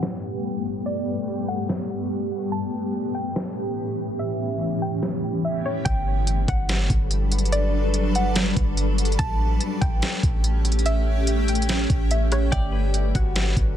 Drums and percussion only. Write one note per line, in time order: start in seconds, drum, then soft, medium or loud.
0.03 snare loud
1.69 snare loud
3.36 snare loud
5.03 snare loud
5.86 kick loud
5.86 closed hi-hat medium
6.27 closed hi-hat medium
6.48 kick loud
6.48 closed hi-hat medium
6.69 snare loud
6.69 closed hi-hat medium
6.90 kick medium
6.90 closed hi-hat medium
7.11 closed hi-hat medium
7.32 closed hi-hat medium
7.39 closed hi-hat medium
7.45 closed hi-hat soft
7.52 closed hi-hat medium
7.94 closed hi-hat medium
8.15 closed hi-hat medium
8.36 snare loud
8.36 closed hi-hat medium
8.57 kick medium
8.57 closed hi-hat medium
8.77 closed hi-hat medium
8.98 closed hi-hat medium
9.05 closed hi-hat medium
9.12 closed hi-hat soft
9.19 kick loud
9.19 closed hi-hat medium
9.61 closed hi-hat medium
9.82 kick loud
9.82 closed hi-hat medium
10.02 snare loud
10.02 closed hi-hat medium
10.23 kick medium
10.23 closed hi-hat medium
10.44 closed hi-hat medium
10.65 closed hi-hat medium
10.72 closed hi-hat medium
10.79 closed hi-hat soft
10.86 closed hi-hat medium
11.27 closed hi-hat medium
11.48 closed hi-hat medium
11.55 closed hi-hat medium
11.62 closed hi-hat medium
11.69 snare loud
11.69 closed hi-hat medium
11.90 kick medium
11.90 closed hi-hat medium
12.11 closed hi-hat medium
12.32 cross-stick loud
12.32 closed hi-hat medium
12.52 kick loud
12.52 closed hi-hat medium
12.94 closed hi-hat medium
13.15 kick loud
13.15 closed hi-hat medium
13.36 snare loud
13.36 closed hi-hat medium
13.57 kick medium
13.57 closed hi-hat medium